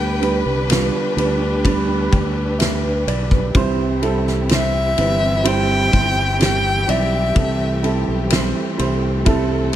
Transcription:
Already playing: fingered electric bass D2, upright piano D3 G3 B3 D4 B4, string section D3 D4 G4 B4, violin G5
0.20 upright piano G3 B3 D4 B4, ride
0.46 fingered electric bass C2
0.69 upright piano G3 B3 D4 F4, snare, ride
1.17 fingered electric bass D2, upright piano G3 B3 D4 B4, ride
1.65 upright piano G3 B3 D4 B4, kick, ride
2.12 fingered electric bass D2, upright piano G5, kick, ride
2.59 upright piano E5, snare, ride
2.83 upright piano G4 B4
3.07 fingered electric bass B1, upright piano B4 D5, ride
3.31 upright piano G4 B4, kick
3.54 fingered electric bass C2, upright piano C3 G3 C4 E4 C5, string section E3 C4 E4 G4, kick, ride
4.01 upright piano G3 C4 E4 A4, ride
4.27 snare
4.49 upright piano G3 C4 E4 C5, snare, ride
4.55 violin E5
4.96 fingered electric bass G1, upright piano G3 C4 E4 B4, ride
5.44 upright piano G3 C4 E4 C5, violin G5, ride
5.91 fingered electric bass G1, upright piano G3 C4 E4 C5, kick, ride
6.38 upright piano G3 C4 E4 G4, snare, ride
6.43 violin G5
6.87 fingered electric bass B1, upright piano G3 C4 E4 D5, violin E5, ride
7.34 fingered electric bass C2, upright piano E3 G3 C4 E4 A4, string section A3 C4, kick, ride
7.82 upright piano G3 C4 E4 A4, ride
8.08 fingered electric bass B1
8.30 upright piano G3 C4 E4 C5, snare, ride
8.77 fingered electric bass C2, upright piano G3 C4 E4 C5, ride
9.25 upright piano G3 C4 E4 A4, string section A4, kick, ride

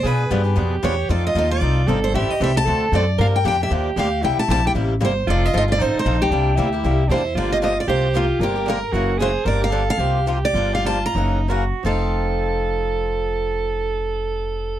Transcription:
0.03 upright bass B2, steel-string acoustic guitar B2 F3 B3 D4 G#4 B4, soprano saxophone G#4
0.30 upright bass G2, steel-string acoustic guitar B2 F3 B3 D4 G#4 B4, soprano saxophone G4
0.44 steel-string acoustic guitar B3 D4 G#4 B4
0.55 upright bass F2, steel-string acoustic guitar B2 F3 B3 D4 G#4 B4
0.83 upright bass E2, steel-string acoustic guitar B2 F3 B3 D4 G#4 B4 C#5
1.09 upright bass F2, steel-string acoustic guitar F3 C4 D#4 A4 D5, soprano saxophone F4
1.27 steel-string acoustic guitar D#5
1.35 upright bass D#2, steel-string acoustic guitar F3 C4 D#4 A4 D#5
1.50 steel-string acoustic guitar C4 D#4 A4 D5
1.61 upright bass C2, steel-string acoustic guitar F3 C4 D#4 A4
1.87 upright bass G1, steel-string acoustic guitar F3 C4 D#4 A4, soprano saxophone A4
2.04 steel-string acoustic guitar C5
2.14 upright bass A1, steel-string acoustic guitar E3 G3 C4 E4 A4 E5, soprano saxophone G4
2.29 steel-string acoustic guitar D#5, muted upright bass stroke
2.40 upright bass C2, steel-string acoustic guitar E3 G3 C4 E4 A4 E5
2.56 steel-string acoustic guitar C4 E4 A4 A5
2.65 upright bass D2, steel-string acoustic guitar D3 A3 C4 F#4 A4, soprano saxophone A4
2.92 upright bass F#2, steel-string acoustic guitar D3 A3 C4 F#4 A4 D5
3.18 upright bass G2, steel-string acoustic guitar D3 F3 A#3 D4 G4 F5, soprano saxophone A#4
3.36 steel-string acoustic guitar G5
3.45 upright bass F2, steel-string acoustic guitar D3 F3 A#3 D4 G4 G5, soprano saxophone G4
3.61 steel-string acoustic guitar A#3 D4 G4 E5
3.71 upright bass D#2, steel-string acoustic guitar D3 F3 A#3 D4 G4
3.96 upright bass D2, steel-string acoustic guitar D3 F3 A#3 D4 G4 F5
4.22 upright bass C2, steel-string acoustic guitar C3 G3 A#3 E4 G4 G5, soprano saxophone E4
4.37 steel-string acoustic guitar A5, muted upright bass stroke
4.48 upright bass A#1, steel-string acoustic guitar C3 G3 A#3 E4 G4 A5
4.65 steel-string acoustic guitar A#3 E4 G4 G5
4.75 upright bass A1, steel-string acoustic guitar C3 G3 A#3 E4 G4
5.00 upright bass G1, steel-string acoustic guitar C3 G3 A#3 E4 G4
5.05 steel-string acoustic guitar C5
5.27 upright bass F1, steel-string acoustic guitar F3 C4 D#4 A4 D5, soprano saxophone F4
5.46 steel-string acoustic guitar D#5
5.54 upright bass G1, steel-string acoustic guitar F3 C4 D#4 A4 D#5
5.68 steel-string acoustic guitar C4 D#4 A4 D5
5.79 upright bass A1, steel-string acoustic guitar F3 C4 D#4 A4 C5, soprano saxophone D#4
5.95 muted upright bass stroke
5.99 steel-string acoustic guitar C5
6.05 upright bass A#1, steel-string acoustic guitar F3 C4 D#4 A4
6.22 steel-string acoustic guitar G4
6.31 upright bass C2, steel-string acoustic guitar C3 G3 A#3 E4 G4, soprano saxophone D4
6.56 upright bass D2, steel-string acoustic guitar C3 G3 A#3 E4 G4, soprano saxophone E4
6.72 steel-string acoustic guitar A#3 E4 G4
6.84 upright bass C2, steel-string acoustic guitar C3 G3 A#3 E4 G4
7.08 upright bass E2, steel-string acoustic guitar C3 G3 E4 G4 C5, soprano saxophone D4
7.12 steel-string acoustic guitar A#3
7.25 soprano saxophone E4
7.35 upright bass G1, steel-string acoustic guitar D3 F3 A#3 D4 G4 D5, soprano saxophone F4
7.51 steel-string acoustic guitar A#3 D4 G4 D#5
7.62 steel-string acoustic guitar D3 F3 A#3 D4 G4 D#5
7.80 steel-string acoustic guitar D5
7.87 upright bass C2, steel-string acoustic guitar C3 F3 A#3 F4 G4 C5, soprano saxophone G4
8.15 steel-string acoustic guitar C3 F3 A#3 F4 G4
8.39 upright bass G1, steel-string acoustic guitar D3 F3 A#3 D4 G4, soprano saxophone A#4
8.56 steel-string acoustic guitar A#3 D4 G4
8.68 steel-string acoustic guitar D3 F3 A#3 D4 G4 A#4
8.92 upright bass F#1, steel-string acoustic guitar C#3 E3 F#3 A#3 C#4 E4 F#4 A#4, soprano saxophone F#4
9.18 steel-string acoustic guitar C#3 E3 F#3 A#3 C#4 E4 F#4 A#4 C5, soprano saxophone G#4
9.45 upright bass G1, steel-string acoustic guitar D3 F3 A#3 D4 G4 D5, soprano saxophone A#4
9.61 steel-string acoustic guitar A#3 D4 G4 F5
9.71 steel-string acoustic guitar D3 F3 A#3 D4 G4, soprano saxophone A4
9.90 steel-string acoustic guitar F5
9.98 upright bass C2, steel-string acoustic guitar C3 F3 A#3 F4 G4, soprano saxophone G4
10.27 steel-string acoustic guitar C3 F3 A#3 F4 G4
10.45 steel-string acoustic guitar D5
10.53 upright bass G1, steel-string acoustic guitar D3 F3 A#3 D4 G4, soprano saxophone F4
10.73 steel-string acoustic guitar A#3 D4 G4 F5
10.86 steel-string acoustic guitar D3 F3 A#3 D4 G4 A5
11.06 steel-string acoustic guitar A#5
11.15 upright bass F#1, steel-string acoustic guitar C#3 E3 F#3 A#3 C#4 E4 F#4 A#4, soprano saxophone D#4
11.48 steel-string acoustic guitar C#3 E3 F#3 A#3 C#4 E4 F#4 A#4, soprano saxophone F#4
11.84 upright bass F1, steel-string acoustic guitar F3 C4 D#4 A4 F5, soprano saxophone A4

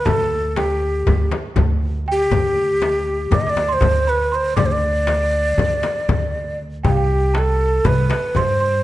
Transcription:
0.06 upright bass D2, ney A4, celesta A5, darbuka dum, frame drum
0.56 ney G4, celesta G5, darbuka tek, frame drum
0.82 darbuka ka
1.07 upright bass D2, darbuka dum, frame drum
1.31 darbuka tek, frame drum
1.56 upright bass D2, darbuka dum, frame drum
2.06 celesta G5, darbuka ka
2.12 ney G4
2.31 upright bass D2, frame drum, darbuka dum
2.82 darbuka tek, frame drum
3.31 upright bass D2, ney D5, celesta D6, frame drum, darbuka dum
3.41 ney D#5
3.47 ney D5, celesta D6
3.57 darbuka tek, frame drum
3.68 celesta C6
3.73 ney C5
3.81 upright bass D2, darbuka dum, frame drum
4.07 ney B4, celesta B5
4.32 ney C5, celesta C6, darbuka ka
4.56 upright bass D2, ney D5, celesta D6, darbuka dum, frame drum
4.66 ney C5
4.72 ney D5, celesta D6
5.07 darbuka tek, frame drum
5.34 darbuka ka
5.57 upright bass D2, darbuka dum, frame drum
5.83 darbuka tek, frame drum
6.09 upright bass D2, darbuka dum, frame drum
6.35 darbuka ka
6.83 upright bass C2, ney G4, celesta G5, darbuka dum, frame drum
6.91 celesta F5
6.97 celesta G5
7.10 darbuka ka
7.34 celesta A5, darbuka tek, frame drum
7.38 ney A4
7.84 upright bass C2, ney B4, celesta B5, darbuka dum, frame drum
8.10 darbuka tek, frame drum
8.35 upright bass G2, ney C5, celesta C6, frame drum, darbuka dum
8.60 celesta C6, darbuka ka

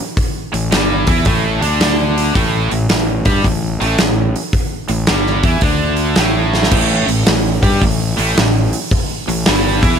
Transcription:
0.17 kick, open hi-hat
0.53 fingered electric bass A1, distorted electric guitar A2, open hi-hat
0.71 fingered electric bass G1, distorted electric guitar G2 G3, snare, open hi-hat
1.07 fingered electric bass E2, distorted electric guitar E3 E4, kick, open hi-hat
1.25 fingered electric bass A1, distorted electric guitar A2 A3, kick, open hi-hat
1.61 fingered electric bass D2, distorted electric guitar D3 D4, open hi-hat
1.81 snare, open hi-hat
2.18 open hi-hat
2.34 fingered electric bass A1, distorted electric guitar A2 A3, kick, open hi-hat
2.71 fingered electric bass A1, distorted electric guitar A2, open hi-hat
2.89 fingered electric bass A1, distorted electric guitar A2, snare, open hi-hat
3.25 fingered electric bass G2, distorted electric guitar G3 G4, kick, open hi-hat
3.44 fingered electric bass A1, distorted electric guitar A2, kick, open hi-hat
3.80 fingered electric bass A1, distorted electric guitar A2 A3, open hi-hat
3.98 fingered electric bass A1, distorted electric guitar A2, snare, open hi-hat
4.36 open hi-hat
4.53 kick, open hi-hat
4.88 fingered electric bass A1, distorted electric guitar A2, open hi-hat
5.07 fingered electric bass G1, distorted electric guitar G2 G3, snare, open hi-hat
5.26 snare
5.43 fingered electric bass E2, distorted electric guitar E3 E4, kick, open hi-hat
5.61 fingered electric bass D2, distorted electric guitar D3 D4, kick, open hi-hat
5.97 open hi-hat
6.16 fingered electric bass A1, distorted electric guitar A2 A3, snare, open hi-hat
6.54 snare
6.63 snare
6.71 fingered electric bass A1, distorted electric guitar A2 A3, kick, crash
7.07 fingered electric bass A1, distorted electric guitar A2, open hi-hat
7.26 fingered electric bass A1, distorted electric guitar A2, snare, open hi-hat
7.63 fingered electric bass G2, distorted electric guitar G3 G4, kick, open hi-hat
7.81 fingered electric bass A1, distorted electric guitar A2, kick, open hi-hat
8.17 fingered electric bass A1, distorted electric guitar A2 A3, open hi-hat
8.35 fingered electric bass A1, distorted electric guitar A2, snare
8.73 open hi-hat
8.91 kick, open hi-hat
9.28 fingered electric bass A1, distorted electric guitar A2, open hi-hat
9.46 fingered electric bass G1, distorted electric guitar G2 G3, snare, open hi-hat
9.82 fingered electric bass E2, distorted electric guitar E3 E4, kick, open hi-hat

